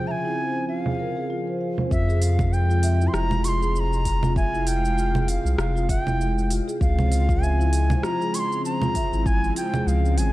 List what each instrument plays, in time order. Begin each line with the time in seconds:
Already playing: analog synth pad C#3 F3 C4 G#4
0.07 marimba E5, bansuri G#5 A#5
0.25 marimba E4
0.69 marimba F4, bansuri F5
0.86 marimba G#4, low conga
1.00 marimba A#4
1.17 marimba G#4
1.30 marimba F4
1.48 marimba C5
1.61 marimba F5
1.78 marimba C5, low conga
1.91 sub bass F2, analog synth pad C3 F3 G#3, marimba F4, bansuri E5, kick, shaker
2.09 marimba G#4, shaker
2.22 bansuri F5, open hi-hat, shaker
2.39 kick, low conga, shaker
2.53 bansuri G5, shaker
2.70 marimba F4, shaker
2.83 marimba E5, open hi-hat, shaker
3.00 marimba E4, shaker
3.07 bansuri C6
3.14 sub bass F1, bansuri A#5, cross-stick, shaker
3.31 low conga, shaker
3.44 marimba F4, bansuri C#6, open hi-hat, shaker
3.48 bansuri C6
3.62 marimba G#4, shaker
3.75 bansuri C6, shaker
3.80 bansuri A#5
3.93 shaker
4.05 kick, open hi-hat, shaker
4.23 marimba F4, low conga, shaker
4.36 marimba E5, analog synth pad F5, bansuri G#5, kick, shaker
4.54 marimba E4, shaker
4.67 bansuri G5, open hi-hat, shaker
4.85 shaker
4.97 marimba F4, shaker
5.14 marimba G#4, low conga, shaker
5.22 bansuri G5
5.28 bansuri F5, open hi-hat, shaker
5.45 sub bass C2, shaker
5.58 sub bass F1, bansuri F5, cross-stick, shaker
5.76 marimba F4, shaker
5.89 marimba E5, bansuri F#5, kick, open hi-hat, shaker
6.02 bansuri G5
6.06 marimba E4, low conga, shaker
6.21 shaker
6.38 shaker
6.50 marimba F4, open hi-hat, shaker
6.68 marimba G#4, shaker
6.80 sub bass C#2, analog synth pad C#3 F3 C4, bansuri F5, kick, shaker
6.99 low conga, shaker
7.12 open hi-hat, shaker
7.29 marimba F4, kick, shaker
7.42 marimba E5, bansuri G#5, shaker
7.59 marimba E4, shaker
7.73 open hi-hat, shaker
7.90 low conga, shaker
8.03 marimba F4, bansuri A#5, cross-stick, shaker
8.21 marimba G#4, shaker
8.34 bansuri C#6, open hi-hat, shaker
8.39 bansuri C6
8.52 shaker
8.65 bansuri A#5, shaker
8.82 marimba F4, low conga, shaker
8.95 marimba E5, kick, open hi-hat, shaker
9.12 sub bass G#1, marimba E4, shaker
9.26 bansuri G#5, kick, shaker
9.44 shaker
9.56 marimba F4, bansuri G5, open hi-hat, shaker
9.74 marimba G#4, low conga, shaker
9.87 sub bass C#2, bansuri F5, shaker
10.05 shaker
10.17 sub bass G#1, bansuri G#5, open hi-hat, shaker